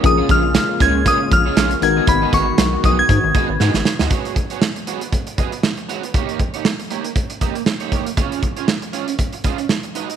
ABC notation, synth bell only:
X:1
M:4/4
L:1/16
Q:"Swing 16ths" 1/4=118
K:C#mix
V:1 name="Synth bell"
d'2 e'4 g'2 d'2 e'4 g'2 | b2 c'4 d' g'6 z3 | z16 | z16 |
z16 |]